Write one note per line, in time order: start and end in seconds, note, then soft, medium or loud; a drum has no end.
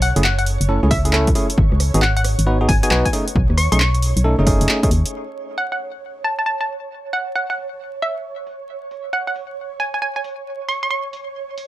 0.00 0.13 B1 medium
0.00 5.12 C#5 medium
0.00 0.18 F#5 medium
0.00 open hi-hat loud
0.16 0.58 F#1 loud
0.16 0.22 A3 medium
0.16 0.22 C#4 medium
0.16 0.22 E4 medium
0.16 0.22 G#4 loud
0.16 closed hi-hat medium
0.24 0.34 F#5 medium
0.24 clap loud
0.38 0.44 F#5 medium
0.38 closed hi-hat soft
0.46 open hi-hat loud
0.61 0.80 F#1 medium
0.61 closed hi-hat medium
0.69 0.79 A3 medium
0.69 0.79 C#4 medium
0.69 0.79 E4 medium
0.69 0.79 A4 medium
0.83 1.34 C#2 loud
0.83 0.94 A3 medium
0.83 0.94 C#4 medium
0.83 0.94 E4 medium
0.83 0.94 G#4 medium
0.91 1.54 E5 medium
0.91 kick loud
0.91 open hi-hat loud
1.05 1.12 A3 medium
1.05 1.12 C#4 medium
1.05 1.12 E4 medium
1.05 1.12 G#4 medium
1.05 closed hi-hat medium
1.13 1.29 A3 medium
1.13 1.29 C#4 medium
1.13 1.29 E4 medium
1.13 1.29 A4 loud
1.13 clap loud
1.27 kick loud
1.27 closed hi-hat medium
1.35 1.46 A3 medium
1.35 1.46 C#4 medium
1.35 1.46 E4 medium
1.35 1.46 G#4 loud
1.35 open hi-hat loud
1.50 closed hi-hat medium
1.58 1.70 G#1 loud
1.58 kick loud
1.72 1.91 C#2 medium
1.72 cross-stick soft
1.80 cross-stick soft
1.80 open hi-hat loud
1.94 2.36 G#1 loud
1.94 2.00 B3 medium
1.94 2.00 D#4 medium
1.94 2.00 F#4 medium
1.94 2.00 G#4 loud
1.94 closed hi-hat medium
2.02 2.11 F#5 medium
2.02 clap loud
2.17 2.22 F#5 medium
2.17 closed hi-hat soft
2.24 cross-stick medium
2.24 open hi-hat loud
2.39 2.67 G#1 medium
2.39 closed hi-hat medium
2.47 2.57 B3 medium
2.47 2.57 D#4 medium
2.47 2.57 F#4 medium
2.47 2.57 B4 medium
2.61 2.71 B3 medium
2.61 2.71 D#4 medium
2.61 2.71 F#4 medium
2.61 2.71 G#4 medium
2.69 2.82 G#1 loud
2.69 2.78 G#5 medium
2.69 kick loud
2.69 open hi-hat loud
2.83 2.90 B3 medium
2.83 2.90 D#4 medium
2.83 2.90 F#4 medium
2.83 2.90 G#4 loud
2.83 2.88 G#5 medium
2.83 closed hi-hat medium
2.91 3.04 B1 medium
2.91 3.07 B3 medium
2.91 3.07 D#4 medium
2.91 3.07 F#4 medium
2.91 3.07 B4 loud
2.91 3.00 G#5 medium
2.91 clap loud
3.05 3.11 G#5 medium
3.05 kick medium
3.05 closed hi-hat medium
3.13 3.24 A3 medium
3.13 3.24 C#4 medium
3.13 3.24 D#4 medium
3.13 3.24 G#4 loud
3.13 open hi-hat loud
3.28 closed hi-hat medium
3.36 3.48 B1 loud
3.36 kick loud
3.50 3.69 D#2 medium
3.50 cross-stick soft
3.57 3.69 C#6 medium
3.57 cross-stick medium
3.57 open hi-hat loud
3.72 4.14 B1 loud
3.72 3.78 A3 medium
3.72 3.78 C#4 medium
3.72 3.78 D#4 medium
3.72 3.78 G#4 loud
3.72 3.78 C#6 medium
3.72 closed hi-hat medium
3.80 4.24 C#6 medium
3.80 clap loud
3.94 closed hi-hat soft
4.02 open hi-hat loud
4.17 4.36 B1 medium
4.17 closed hi-hat medium
4.24 4.35 A3 medium
4.24 4.35 C#4 medium
4.24 4.35 D#4 medium
4.24 4.35 A4 medium
4.39 4.61 F#1 loud
4.39 4.45 A3 medium
4.39 4.45 C#4 medium
4.39 4.45 D#4 medium
4.39 4.45 G#4 medium
4.47 4.80 A3 medium
4.47 4.80 C#4 medium
4.47 4.80 D#4 medium
4.47 4.80 G#4 medium
4.47 kick loud
4.47 open hi-hat loud
4.61 4.68 F#1 loud
4.61 closed hi-hat medium
4.69 clap loud
4.83 4.89 A3 medium
4.83 4.89 C#4 medium
4.83 4.89 D#4 medium
4.83 4.89 G#4 medium
4.83 kick loud
4.83 closed hi-hat medium
4.91 5.04 D#2 loud
4.91 open hi-hat loud
5.06 closed hi-hat medium
5.14 11.67 C#5 medium
5.36 open hi-hat loud
5.58 5.67 F#5 medium
5.72 5.77 F#5 medium
5.80 open hi-hat loud
6.24 6.34 A5 medium
6.24 open hi-hat loud
6.39 6.44 A5 medium
6.46 6.56 A5 medium
6.61 6.66 A5 medium
6.69 open hi-hat loud
7.13 7.29 F#5 medium
7.13 open hi-hat loud
7.35 7.45 F#5 medium
7.50 7.55 F#5 medium
7.58 open hi-hat loud
8.02 8.66 E5 medium
8.02 open hi-hat loud
8.47 open hi-hat loud
8.91 open hi-hat medium
9.13 9.22 F#5 medium
9.27 9.33 F#5 medium
9.36 open hi-hat medium
9.80 9.89 G#5 medium
9.80 open hi-hat medium
9.94 9.99 G#5 medium
10.02 10.11 G#5 medium
10.16 10.21 G#5 medium
10.24 open hi-hat medium
10.69 10.80 C#6 medium
10.69 open hi-hat medium
10.83 10.89 C#6 medium
10.90 11.35 C#6 medium
11.13 open hi-hat medium
11.58 open hi-hat medium